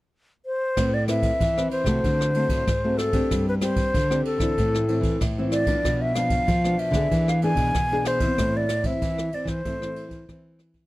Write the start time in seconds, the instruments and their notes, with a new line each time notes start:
0.46 flute C5
0.77 nylon-string guitar A2 A3 C4 E4 B4, kick, cross-stick, ride
0.94 flute D5
1.08 nylon-string guitar C4 E4 B4, flute E5, cross-stick, ride
1.23 kick, ride
1.41 nylon-string guitar E3, kick, ride
1.57 nylon-string guitar C4 E4 B4, cross-stick
1.71 flute C5, ride
1.84 nylon-string guitar C3 A3 C4 F#4, kick, cross-stick, ride
2.04 nylon-string guitar D3, kick, ride
2.21 cross-stick
2.35 nylon-string guitar A3 C4 F#4, ride
2.47 nylon-string guitar A2, kick, ride
2.67 nylon-string guitar G#2, kick, cross-stick, ride
2.84 nylon-string guitar A3 C4 F#4
2.98 flute A4, cross-stick, ride
3.13 nylon-string guitar C4 D4 G4, kick, ride
3.31 nylon-string guitar G2 G3, kick, cross-stick, ride
3.48 flute B4
3.61 nylon-string guitar C4 D4 G4, flute C5, cross-stick, ride
3.76 kick, ride
3.94 nylon-string guitar D3, kick, ride
4.10 nylon-string guitar C4 D4 G4, cross-stick
4.25 flute A4, ride
4.38 nylon-string guitar D3 E3 C4 E4, kick, cross-stick, ride
4.58 nylon-string guitar A2, kick, ride
4.74 cross-stick
4.88 nylon-string guitar E3 C4 E4, ride
5.01 nylon-string guitar E3, kick, ride
5.21 nylon-string guitar A2 E3, kick, cross-stick, ride
5.38 nylon-string guitar E3 C4 E4
5.52 flute D5, cross-stick, ride
5.67 nylon-string guitar F3 B3 D4, kick, ride
5.85 nylon-string guitar B2, kick, cross-stick, ride
6.01 flute E5
6.15 nylon-string guitar F3 B3 D4, flute F5, cross-stick, ride
6.30 kick, ride
6.48 nylon-string guitar B2 F3, kick, ride
6.64 nylon-string guitar F3 B3 D4, cross-stick
6.79 flute E5, ride
6.91 nylon-string guitar D3 B3 D4, kick, cross-stick, ride
6.96 nylon-string guitar G#4
7.11 nylon-string guitar E3, kick, ride
7.28 flute F5, cross-stick
7.42 nylon-string guitar B3 D4 G#4, flute G#5, ride
7.55 nylon-string guitar B2, kick, ride
7.74 nylon-string guitar B2, kick, cross-stick, ride
7.92 nylon-string guitar B3 D4 G#4
8.05 flute C5, cross-stick, ride
8.20 nylon-string guitar E3 C4 E4, kick, ride
8.38 nylon-string guitar A2, kick, cross-stick, ride
8.57 flute D5
8.69 cross-stick, ride
8.84 nylon-string guitar E3 C4 E4, flute E5, kick, ride
9.02 nylon-string guitar E3, kick, ride
9.18 cross-stick
9.32 nylon-string guitar E3 C4 E4, flute D5, ride
9.45 nylon-string guitar E3, flute C5, kick, cross-stick, ride
9.65 nylon-string guitar A2 E3 A3 C4 E4, kick, ride
9.82 nylon-string guitar E3 C4 E4, cross-stick
9.96 ride
10.09 nylon-string guitar E3, kick, ride
10.29 nylon-string guitar E3 C4 E4, kick, cross-stick, ride
10.59 cross-stick, ride
10.74 kick, ride